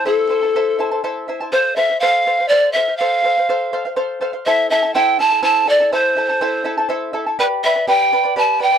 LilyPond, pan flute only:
\new Staff \with { instrumentName = "Pan flute" } { \time 6/8 \key f \lydian \tempo 4. = 82 a'2 r4 | c''8 e''8 f''4 d''8 e''8 | f''2 r4 | e''8 e''8 g''8 a''8 a''8 d''8 |
c''2 r4 | b'8 e''8 g''4 a''8 g''8 | }